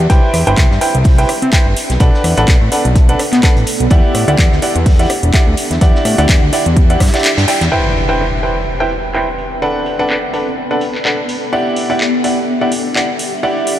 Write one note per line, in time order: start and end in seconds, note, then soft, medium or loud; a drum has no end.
0.00 0.77 D4 medium
0.00 0.77 G4 medium
0.00 0.70 E5 medium
0.10 0.20 C2 loud
0.10 1.76 C4 medium
0.10 0.44 E4 medium
0.10 0.44 B4 medium
0.10 0.44 C5 medium
0.10 0.44 G5 loud
0.10 kick loud
0.10 closed hi-hat medium
0.34 0.44 E2 medium
0.34 cross-stick medium
0.34 closed hi-hat medium
0.34 open hi-hat loud
0.47 0.55 G1 loud
0.47 0.62 E4 medium
0.47 0.62 B4 medium
0.47 0.62 C5 medium
0.47 0.62 G5 loud
0.47 closed hi-hat soft
0.57 0.68 C2 medium
0.57 2.63 B4 medium
0.57 kick loud
0.57 snare loud
0.57 clap loud
0.57 closed hi-hat medium
0.71 0.79 G2 medium
0.71 2.63 E5 medium
0.71 snare soft
0.81 0.93 E4 medium
0.81 0.93 B4 medium
0.81 0.93 C5 medium
0.81 0.93 G5 medium
0.81 closed hi-hat medium
0.81 open hi-hat loud
0.95 1.26 C2 loud
0.95 closed hi-hat soft
1.04 kick loud
1.04 closed hi-hat medium
1.04 open hi-hat medium
1.18 1.27 E4 medium
1.18 1.27 B4 medium
1.18 1.27 C5 medium
1.18 1.27 G5 medium
1.18 closed hi-hat medium
1.29 cross-stick medium
1.29 closed hi-hat medium
1.29 open hi-hat loud
1.42 1.51 C3 loud
1.42 closed hi-hat soft
1.53 1.64 E4 medium
1.53 1.64 B4 medium
1.53 1.64 C5 medium
1.53 1.64 G5 medium
1.53 kick loud
1.53 snare loud
1.53 clap loud
1.53 closed hi-hat medium
1.66 1.74 G1 medium
1.76 5.44 B3 medium
1.76 closed hi-hat medium
1.76 open hi-hat loud
1.90 1.98 B1 medium
1.90 snare soft
1.90 closed hi-hat soft
2.00 2.11 B1 loud
2.00 2.34 D4 loud
2.00 2.34 A4 medium
2.00 2.34 B4 medium
2.00 2.34 F#5 loud
2.00 kick loud
2.00 closed hi-hat medium
2.14 5.44 D5 medium
2.14 snare soft
2.22 2.35 E2 medium
2.22 5.24 A4 medium
2.22 cross-stick medium
2.22 closed hi-hat medium
2.22 open hi-hat loud
2.37 2.46 A1 medium
2.37 2.53 D4 medium
2.37 2.53 A4 medium
2.37 2.53 B4 medium
2.37 2.53 F#5 loud
2.37 closed hi-hat soft
2.48 2.59 B1 medium
2.48 kick loud
2.48 snare loud
2.48 clap loud
2.48 closed hi-hat medium
2.61 2.70 A2 medium
2.72 2.83 D4 medium
2.72 2.83 A4 medium
2.72 2.83 B4 medium
2.72 2.83 F#5 medium
2.72 closed hi-hat medium
2.72 open hi-hat loud
2.85 3.16 B1 loud
2.85 closed hi-hat soft
2.95 kick loud
2.95 closed hi-hat medium
3.09 3.18 D4 medium
3.09 3.18 A4 medium
3.09 3.18 B4 medium
3.09 3.18 F#5 medium
3.09 closed hi-hat medium
3.19 cross-stick medium
3.19 closed hi-hat medium
3.19 open hi-hat loud
3.31 3.41 B2 loud
3.31 snare soft
3.31 clap soft
3.31 closed hi-hat medium
3.43 3.55 D4 medium
3.43 3.55 A4 medium
3.43 3.55 B4 medium
3.43 3.55 F#5 medium
3.43 kick loud
3.43 snare loud
3.43 clap loud
3.43 closed hi-hat medium
3.56 3.65 A1 medium
3.56 closed hi-hat soft
3.66 closed hi-hat medium
3.66 open hi-hat loud
3.80 3.89 B1 medium
3.80 closed hi-hat soft
3.90 4.01 E2 loud
3.90 8.39 D4 medium
3.90 4.25 E4 medium
3.90 4.25 G4 medium
3.90 4.25 D5 medium
3.90 4.25 F#5 loud
3.90 kick loud
3.90 closed hi-hat medium
4.14 4.25 A2 medium
4.14 cross-stick medium
4.14 closed hi-hat medium
4.14 open hi-hat loud
4.28 4.36 D2 loud
4.28 4.43 E4 medium
4.28 4.43 G4 medium
4.28 4.43 D5 medium
4.28 8.39 E5 medium
4.28 4.43 F#5 loud
4.28 closed hi-hat medium
4.36 4.49 E2 medium
4.36 8.39 G4 medium
4.36 kick loud
4.36 snare loud
4.36 clap loud
4.36 closed hi-hat medium
4.52 4.60 D2 medium
4.52 snare soft
4.62 4.74 E4 medium
4.62 4.74 G4 medium
4.62 4.74 D5 medium
4.62 4.74 F#5 medium
4.62 closed hi-hat medium
4.62 open hi-hat loud
4.76 5.06 E2 loud
4.76 closed hi-hat medium
4.86 kick loud
4.86 closed hi-hat medium
4.86 open hi-hat medium
4.99 5.08 E4 medium
4.99 5.08 G4 medium
4.99 5.08 D5 medium
4.99 5.08 F#5 medium
4.99 closed hi-hat medium
5.10 cross-stick medium
5.10 closed hi-hat medium
5.10 open hi-hat loud
5.23 5.32 E1 loud
5.23 closed hi-hat medium
5.34 5.45 E4 medium
5.34 5.45 G4 medium
5.34 5.45 D5 medium
5.34 5.45 F#5 medium
5.34 kick loud
5.34 snare loud
5.34 clap loud
5.34 closed hi-hat medium
5.47 5.55 D2 medium
5.57 closed hi-hat medium
5.57 open hi-hat loud
5.71 5.79 E2 medium
5.71 snare medium
5.71 closed hi-hat medium
5.81 5.92 E2 loud
5.81 6.15 E4 medium
5.81 6.15 G4 medium
5.81 6.15 D5 medium
5.81 6.15 F#5 loud
5.81 kick loud
5.81 closed hi-hat medium
5.95 snare soft
6.05 6.16 A2 medium
6.05 cross-stick medium
6.05 closed hi-hat medium
6.05 open hi-hat loud
6.18 6.27 D2 loud
6.18 6.34 E4 medium
6.18 6.34 G4 medium
6.18 6.34 D5 medium
6.18 6.34 F#5 loud
6.18 closed hi-hat soft
6.18 closed hi-hat medium
6.29 6.40 E2 medium
6.29 kick loud
6.29 snare loud
6.29 clap loud
6.29 closed hi-hat medium
6.42 6.51 D2 medium
6.53 6.64 E4 medium
6.53 6.64 G4 medium
6.53 6.64 D5 medium
6.53 6.64 F#5 medium
6.53 closed hi-hat medium
6.53 open hi-hat loud
6.66 6.97 E2 loud
6.66 closed hi-hat medium
6.77 kick loud
6.77 closed hi-hat medium
6.90 6.99 E4 medium
6.90 6.99 G4 medium
6.90 6.99 D5 medium
6.90 6.99 F#5 loud
6.90 closed hi-hat medium
7.00 7.11 G2 loud
7.00 kick medium
7.00 cross-stick medium
7.00 snare medium
7.00 closed hi-hat medium
7.00 open hi-hat loud
7.07 snare medium
7.07 closed hi-hat medium
7.13 7.29 E4 medium
7.13 7.29 G4 medium
7.13 7.29 D5 medium
7.13 7.29 F#5 medium
7.13 snare medium
7.13 clap soft
7.13 closed hi-hat medium
7.18 snare medium
7.18 closed hi-hat medium
7.24 snare loud
7.24 clap loud
7.24 closed hi-hat medium
7.37 7.46 G2 medium
7.37 snare loud
7.37 closed hi-hat medium
7.48 7.59 E4 medium
7.48 7.59 G4 medium
7.48 7.59 D5 medium
7.48 7.59 G5 medium
7.48 snare loud
7.48 closed hi-hat medium
7.48 open hi-hat loud
7.61 7.70 E2 loud
7.61 snare medium
7.61 closed hi-hat medium
7.72 9.38 C4 medium
7.72 8.06 E4 medium
7.72 8.06 B4 medium
7.72 8.06 C5 medium
7.72 8.06 G5 loud
7.72 impact medium
7.91 10.25 B4 medium
7.96 open hi-hat loud
8.09 8.24 E4 medium
8.09 8.24 B4 medium
8.09 8.24 C5 medium
8.09 8.24 G5 medium
8.20 clap loud
8.43 8.54 E4 medium
8.43 8.54 B4 medium
8.43 8.54 C5 medium
8.43 8.54 G5 medium
8.47 10.15 E5 medium
8.80 8.89 E4 medium
8.80 8.89 B4 medium
8.80 8.89 C5 medium
8.80 8.89 G5 medium
8.91 open hi-hat loud
9.15 9.26 E4 medium
9.15 9.26 B4 medium
9.15 9.26 C5 medium
9.15 9.26 G5 medium
9.15 clap loud
9.38 13.06 B3 medium
9.38 open hi-hat medium
9.58 9.96 D4 medium
9.58 12.61 A4 medium
9.58 9.96 A4 medium
9.58 9.96 B4 medium
9.58 9.96 F#5 loud
9.73 13.06 D5 medium
9.86 open hi-hat loud
9.99 10.15 D4 medium
9.99 10.15 A4 medium
9.99 10.15 B4 medium
9.99 10.15 F#5 loud
10.10 clap loud
10.34 10.45 D4 medium
10.34 10.45 A4 medium
10.34 10.45 B4 medium
10.34 10.45 F#5 medium
10.34 open hi-hat loud
10.71 10.80 D4 medium
10.71 10.80 A4 medium
10.71 10.80 B4 medium
10.71 10.80 F#5 medium
10.81 open hi-hat loud
10.95 clap soft
11.05 11.16 D4 medium
11.05 11.16 A4 medium
11.05 11.16 B4 medium
11.05 11.16 F#5 medium
11.05 clap loud
11.29 open hi-hat loud
11.53 13.79 D4 medium
11.53 11.87 E4 medium
11.53 11.87 G4 medium
11.53 11.87 D5 medium
11.53 11.87 F#5 loud
11.68 13.79 E5 medium
11.76 13.79 G4 medium
11.76 open hi-hat loud
11.90 12.05 E4 medium
11.90 12.05 G4 medium
11.90 12.05 D5 medium
11.90 12.05 F#5 loud
12.01 clap loud
12.24 12.35 E4 medium
12.24 12.35 G4 medium
12.24 12.35 D5 medium
12.24 12.35 F#5 medium
12.24 open hi-hat loud
12.61 12.70 E4 medium
12.61 12.70 G4 medium
12.61 12.70 D5 medium
12.61 12.70 F#5 medium
12.72 open hi-hat loud
12.95 13.07 E4 medium
12.95 13.07 G4 medium
12.95 13.07 D5 medium
12.95 13.07 F#5 medium
12.95 clap loud
13.19 open hi-hat loud
13.43 13.77 E4 medium
13.43 13.77 G4 medium
13.43 13.77 D5 medium
13.43 13.77 F#5 loud
13.67 open hi-hat loud